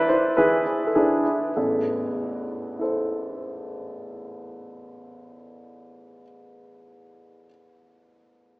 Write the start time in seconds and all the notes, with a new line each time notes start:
0.09 E4 C5
0.37 E3 E4 G#4 B4
0.66 E4
0.87 A4
0.95 E3 D4 E4 G#4
1.25 E4
1.56 A1 E2 A4
2.79 E4 A4 C5